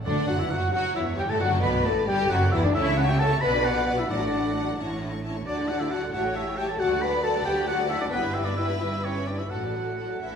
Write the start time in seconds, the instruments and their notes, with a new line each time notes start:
0.05 double bass section D2, cello section D2, viola section D3, timpani D3, violin section D4 F#5, french horn section D4, oboe D5, flute section D5
0.27 double bass section F#1, cello section F#2, viola section F#3, french horn section F#4, violin section F#4, oboe F#5, flute section F#5
0.39 cello section E2, viola section E3, violin section E4, french horn section E4, oboe E5, flute section E5
0.49 double bass section F#1, cello section F#2, viola section F#3, french horn section F#4, violin section F#4, oboe F#5, flute section F#5
0.72 double bass section F#1, cello section F#2, viola section F#3, french horn section F#4, violin section F#4 C#5, flute section F#5, oboe F#5
0.95 double bass section E1, cello section E2, viola section E3, french horn section E4, violin section E4, flute section E5, oboe E5
1.18 double bass section G1, cello section G2, viola section G3, french horn section G4, violin section G4, oboe G5, flute section G5
1.29 cello section A2, viola section A3, violin section A4, french horn section A4, oboe A5, flute section A5
1.40 double bass section F#1, cello section F#2, timpani D3, viola section F#3, violin section F#4 D5, french horn section F#4, oboe F#5, flute section F#5
1.62 double bass section B1, cello section B2, viola section B3, violin section B4, french horn section B4, oboe B5, flute section B5
1.85 double bass section A1, cello section A2, viola section A3, french horn section A4, violin section A4, flute section A5, oboe A5
2.07 double bass section G1, cello section G2, viola section G3, violin section G4, french horn section G4, flute section G5, oboe G5
2.30 double bass section F#1, cello section F#2, viola section F#3, french horn section F#4, violin section F#4, flute section F#5, oboe F#5
2.51 double bass section E1, cello section E2, viola section E3, violin section E4, french horn section E4, flute section E5, oboe E5
2.62 cello section D2, viola section D3, violin section D4, french horn section D4, flute section D5, oboe D5
2.73 double bass section C#2, cello section C#3, viola section C#4 A4, french horn section E4, violin section C#5 E5 A5, flute section E5, oboe E5
2.86 viola section A3 C#5, violin section E5 C#6
2.95 viola section C#4 A4, french horn section F#4, violin section C#5 A5, flute section F#5, oboe F#5
3.07 viola section A3 C#5, french horn section G4, violin section E5 C#6, flute section G5, oboe G5
3.18 viola section C#4 A4, french horn section A4, violin section C#5 A5, flute section A5, oboe A5
3.30 viola section A3 C#5, violin section E5 C#6
3.40 double bass section B1, cello section B2, viola section B3 B4, violin section B4 D5 F#5, french horn section B4, flute section B5, oboe B5
3.53 viola section D4 F#4, violin section D5 B5
3.64 viola section B3 B4, french horn section F#4, violin section B4 F#5, flute section F#5, oboe F#5
3.76 viola section D4 F#4, violin section D5 B5
3.86 viola section B3 B4, french horn section F#4, violin section B4 F#5, flute section F#5, oboe F#5
3.98 viola section D4 F#4, french horn section E4, violin section D5 B5, flute section E5, oboe E5
4.09 double bass section A1, cello section A2, timpani A2, viola section F#3 F#4, french horn section D4, flute section D5, oboe D5, violin section F#5 A5
4.21 viola section A3 A4, violin section D5 F#5
4.33 viola section F#3 F#4, violin section F#5 A5
4.45 viola section A3 A4, violin section D5 F#5
4.56 viola section F#3 F#4, violin section F#5 A5
4.66 viola section A3 A4, violin section D5 F#5
4.77 double bass section A1, cello section A2, viola section C#4 E4, violin section E5 A5
4.88 viola section A3 C#4, violin section C#5 C#6
5.00 viola section C#4 E4, violin section E5 A5
5.11 viola section A3 C#4, violin section C#5 C#6
5.24 viola section C#4 E4, violin section E5 A5
5.34 viola section A3 C#4, violin section C#5 C#6
5.46 double bass section D2, cello section D3, viola section F#3 F#4, french horn section D4, violin section D5 F#5 A5, oboe D5, flute section D5
5.57 viola section A3 A4, violin section D5 F#5
5.68 viola section F#3 F#4, french horn section F#4, violin section F#5 A5, oboe F#5, flute section F#5
5.80 viola section A3 A4, french horn section E4, violin section D5 F#5, oboe E5, flute section E5
5.91 viola section F#3 F#4, french horn section F#4, oboe F#5, violin section F#5 A5, flute section F#5
6.02 viola section A3 A4, violin section D5 F#5
6.13 double bass section A1, cello section A2, viola section G3 G4, french horn section F#4, violin section C#5 E5 A5, oboe F#5, flute section F#5
6.23 viola section A3 A4, violin section C#5 G5
6.34 viola section G3 G4, french horn section E4, violin section E5 A5, oboe E5, flute section E5
6.45 viola section A3 A4, violin section C#5 G5
6.57 viola section G3 G4, french horn section G4, violin section E5 A5, oboe G5, flute section G5
6.68 viola section A3 A4, french horn section A4, violin section C#5 G5, oboe A5, flute section A5
6.79 cello section D2, double bass section D2, viola section F#3 F#4, french horn section F#4, violin section D5 F#5 A5, oboe F#5, flute section F#5
6.90 viola section A3 A4, violin section D5 F#5
7.01 viola section F#3 F#4, french horn section B4, violin section F#5 A5, oboe B5, flute section B5
7.12 viola section A3 A4, violin section D5 F#5
7.22 viola section F#3 F#4, french horn section A4, violin section F#5 A5, oboe A5, flute section A5
7.34 viola section A3 A4, violin section D5 F#5
7.44 double bass section D2, cello section D2, viola section F#3 F#4, french horn section G4, violin section F#5 A5, oboe G5, flute section G5
7.56 viola section A3 A4, violin section D5 F#5
7.67 viola section F#3 F#4, french horn section F#4, violin section F#5 A5, oboe F#5, flute section F#5
7.79 viola section A3 A4, violin section D5 F#5
7.89 viola section F#3 F#4, french horn section E4, oboe E5, flute section E5, violin section F#5 A5
8.01 viola section A3 A4, french horn section D4, violin section D5 F#5, oboe D5, flute section D5
8.11 double bass section G1, cello section G2, viola section G3 E4, french horn section B3, violin section B4 G5, oboe B4, flute section B4
8.23 viola section B3 G4, violin section E5 B5
8.33 viola section G3 E4, french horn section E4, violin section B4 G5, oboe E5, flute section E5
8.45 viola section B3 G4, french horn section D4, oboe D5, flute section D5, violin section E5 B5
8.56 viola section G3 E4, french horn section E4, violin section B4 G5, oboe E5, flute section E5
8.68 viola section B3 G4, violin section E5 B5
8.79 double bass section G1, cello section G2, viola section G3 E4, french horn section E4, violin section B4 G5, flute section E5, oboe E5
8.91 viola section B3 G4, violin section E5 B5
9.03 viola section G3 E4, french horn section C#4, violin section B4 G5, oboe C#5, flute section C#5
9.15 viola section B3 G4, violin section E5 B5
9.27 viola section G3 E4, french horn section D4, violin section B4 G5, oboe D5, flute section D5
9.38 viola section B3 G4, french horn section E4, violin section E5 B5, flute section E5, oboe E5
9.50 double bass section A1, cello section A2, viola section F#3 F#4, french horn section F#4, violin section A4 F#5, oboe F#5, flute section F#5
9.62 viola section A3 A4, violin section D5 A5
9.74 viola section F#3 F#4, violin section A4 F#5
9.85 viola section A3 A4, violin section D5 A5
9.98 viola section F#3 F#4, violin section A4 F#5
10.09 viola section A3 A4, violin section D5 A5
10.21 double bass section A1, cello section A2, french horn section E3, viola section C#4 A4, violin section E4 E5